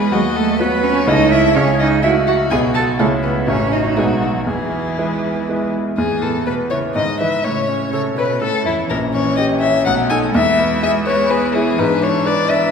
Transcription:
Already playing: E2 G#3 B3 G#4 B4
0.11 D#2 F#3 F#4 D#5
0.35 A3 A4
0.59 F#3 B3 B4
0.83 C#4 C#5
1.07 C#2 A3 D#4 E4 A4 C#5 D#5
1.31 E4 E5
1.55 C#2 C#4 G#4 C#5
1.80 D#4 D#5
2.03 A3 E4 F#4 E5
2.27 F#4 F#5
2.51 B1 B3 F#4 G#4 D#5 G#5
2.74 A4 A5
2.99 C#2 G#3 A3 E4 A4 C#5
3.23 B3 B4
3.47 A1 A3 C#4 F#4 C#5
3.72 D#4 D#5
3.97 B1 G#3 A3 D#4 G#4 B4
4.21 F#3 F#4
4.46 E2 E3 E4 G#4
4.98 G#3 E4 B4
5.49 G#3 E4 B4
5.97 E2 G#2 G#4
6.22 A2 B3 A4
6.46 B2 B4
6.70 C#3 E4 C#5
6.95 G#2 D#3 D#5
7.20 E3 E4 B4 E5
7.44 A2 C#3 C#5
7.69 C#4
7.92 C#3 A4 C#5
8.17 B2 B4 C#5
8.41 A2 A4
8.65 E2 E4
8.89 A#1 E3 C#4 A#4
9.14 C#4 C#5
9.37 G4 D#5
9.60 C#5 E5
9.86 B1 A3 D#4 F#5
10.10 D#4 A4 G#5
10.34 E2 G#3 E4 E5
10.59 B3
10.83 G#4 E5
11.06 B4 C#5
11.31 G#4 B4
11.55 E4 G#4
11.79 G#2 E3 D4 B4
12.02 D4 C#5
12.26 B4 D5
12.50 D5 E5

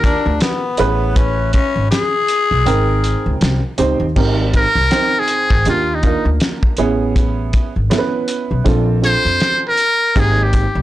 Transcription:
Already playing: D#2 D4 F4 G4 A#4
0.04 D4, kick, closed hi-hat
0.26 D2
0.40 B3, snare, closed hi-hat
0.77 A1 C#4 E4 G#4 B4, closed hi-hat
1.16 C#4, kick, closed hi-hat
1.53 C#4, kick, closed hi-hat
1.76 G#1
1.91 G#4, snare, closed hi-hat
2.28 closed hi-hat
2.51 B1
2.66 G#1 C4 D#4 A#4 G5, closed hi-hat
3.04 closed hi-hat
3.26 C#2
3.41 C2, snare, closed hi-hat
3.78 C#2 C4 D#4 G4 C5, closed hi-hat
4.00 D#2
4.16 G#1 C4 D#4 G4 A#4, kick, crash
4.54 A#4, kick, closed hi-hat
4.75 C2
4.91 C4 D#4 C5 G5, snare, closed hi-hat
5.20 G#4
5.28 closed hi-hat
5.50 G#1, kick
5.65 D#2 A#3 D4 F4 G4, closed hi-hat
5.70 F4
5.95 D#4
6.03 A#3 D4 F4 A#4, kick, closed hi-hat
6.25 D2
6.40 snare, closed hi-hat
6.63 kick
6.77 A1 B3 C#4 E4 G#4, closed hi-hat
7.16 kick, closed hi-hat
7.53 kick, closed hi-hat
7.76 G#1
7.90 B3 C#4 E4 A4, snare, closed hi-hat
7.98 B4
8.28 closed hi-hat
8.51 B1
8.64 A#1 C4 D4 F4 A4, kick, closed hi-hat
9.02 C4 D4 F4 A4 C5, closed hi-hat
9.25 F2
9.40 snare, closed hi-hat
9.69 A#4
9.77 closed hi-hat
10.15 G#1 A#3 C4 D#4 G4, kick, closed hi-hat
10.19 G#4
10.43 G4
10.53 kick, closed hi-hat
10.75 C2

